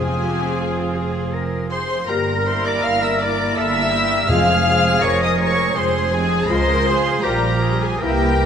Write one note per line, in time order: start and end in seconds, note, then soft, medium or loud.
0.00 2.09 F1 medium
0.00 0.94 F2 medium
0.00 1.92 F3 medium
0.00 0.14 C4 medium
0.00 2.04 C4 medium
0.00 0.14 F4 medium
0.00 2.04 F4 medium
0.00 0.24 G#4 medium
0.00 1.31 G#4 medium
0.00 1.32 G#4 medium
0.00 1.91 G#4 medium
0.00 1.30 G#5 loud
0.25 0.61 G4 medium
0.61 0.98 F4 medium
0.97 1.34 G#4 medium
1.34 1.71 A#4 medium
1.70 2.08 G#4 medium
1.70 2.06 C5 medium
1.70 2.11 C5 loud
1.70 2.06 C6 loud
2.08 2.75 G1 medium
2.08 3.53 G3 medium
2.08 2.35 A#3 medium
2.08 2.35 G4 medium
2.08 3.53 A#4 medium
2.08 2.46 A#4 medium
2.08 3.54 A#4 loud
2.08 2.46 A#4 medium
2.08 2.48 A#4 medium
2.08 2.46 A#5 loud
2.46 3.19 A#3 medium
2.46 3.19 E4 medium
2.46 2.65 C5 loud
2.46 2.65 C5 medium
2.46 2.67 C5 medium
2.46 2.65 C6 loud
2.65 2.84 D5 loud
2.65 2.84 D5 medium
2.65 2.85 D5 medium
2.65 2.84 D6 loud
2.83 3.49 G1 medium
2.83 3.02 F5 loud
2.83 3.04 F5 loud
2.83 3.02 F6 loud
3.02 3.20 E5 medium
3.02 3.21 E5 medium
3.02 3.20 E5 loud
3.02 3.21 E6 loud
3.20 3.91 A#3 medium
3.20 3.91 E4 medium
3.20 3.57 D5 loud
3.20 3.57 D5 medium
3.20 3.59 D5 medium
3.20 3.57 D6 loud
3.56 4.21 G1 loud
3.56 4.31 G3 medium
3.56 3.93 A4 medium
3.56 4.28 A#4 medium
3.56 4.29 E5 loud
3.56 4.30 E5 loud
3.56 4.32 E5 loud
3.56 4.30 E6 loud
3.92 4.29 A#3 medium
3.92 4.29 E4 medium
3.92 4.29 G4 medium
4.29 4.95 F1 loud
4.29 5.35 F2 loud
4.29 5.75 F3 medium
4.29 4.65 G#3 medium
4.29 4.56 G#3 medium
4.29 4.65 C4 medium
4.29 4.56 F4 medium
4.29 5.01 G#4 loud
4.29 5.72 G#4 loud
4.29 5.02 F5 loud
4.29 5.04 F5 loud
4.29 5.03 F6 loud
4.66 5.38 G#3 medium
4.66 5.38 C4 medium
5.02 5.67 F1 medium
5.02 5.75 A#4 loud
5.02 5.21 C#5 loud
5.02 5.21 C#6 loud
5.21 5.39 D#5 loud
5.21 5.41 D#5 loud
5.21 5.40 D#6 loud
5.39 6.11 G#3 medium
5.39 6.11 C4 medium
5.39 5.78 C#5 loud
5.39 5.76 C#5 loud
5.39 5.75 C#6 loud
5.74 6.41 F1 loud
5.74 6.47 F3 medium
5.74 6.47 G#4 medium
5.74 6.49 G#4 medium
5.74 6.12 C5 medium
5.74 6.13 C5 medium
5.74 6.12 C6 loud
6.11 6.48 G#3 medium
6.11 6.49 C4 medium
6.11 6.48 G#4 loud
6.11 6.49 G#4 loud
6.11 6.49 G#5 loud
6.47 7.15 C#2 loud
6.47 7.20 F3 loud
6.47 6.76 G#3 medium
6.47 6.76 F4 loud
6.47 7.19 G#4 medium
6.47 6.85 A#4 loud
6.47 7.24 C5 loud
6.47 7.26 C5 loud
6.47 7.24 C6 loud
6.86 7.23 G#3 medium
6.86 7.22 F4 medium
6.86 7.24 G#4 loud
7.23 7.92 A#1 medium
7.23 8.00 F3 medium
7.23 7.61 G3 medium
7.23 7.52 G3 loud
7.23 7.61 F4 medium
7.23 7.52 F4 loud
7.23 7.64 G4 medium
7.23 8.02 G4 loud
7.23 7.82 A#4 medium
7.23 7.82 A#4 loud
7.23 7.84 A#4 medium
7.23 7.82 A#5 loud
7.62 8.01 G3 medium
7.62 8.01 F4 medium
7.62 8.03 G#4 medium
7.81 8.01 G#4 medium
7.81 8.02 G#4 medium
7.81 8.03 G#4 medium
7.81 8.02 G#5 loud
8.01 8.46 C2 medium
8.01 8.46 E3 medium
8.01 8.40 A#3 medium
8.01 8.31 A#3 medium
8.01 8.40 E4 medium
8.01 8.31 E4 loud
8.01 8.46 G4 loud
8.01 8.46 G4 medium
8.01 8.46 A#4 medium
8.01 8.46 G5 loud
8.41 8.46 A#3 medium
8.41 8.46 E4 medium